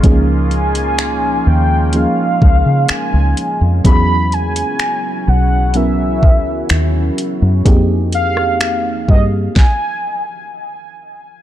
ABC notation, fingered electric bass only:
X:1
M:4/4
L:1/16
Q:1/4=63
K:Dblyd
V:1 name="Fingered electric bass" clef=bass
D,,6 E,,3 z D,, D, z D,, z F,, | =E,,4 z2 =B,,,4 ^C,,2 _E,,2 z ^F,, | F,,6 G,,2 z8 |]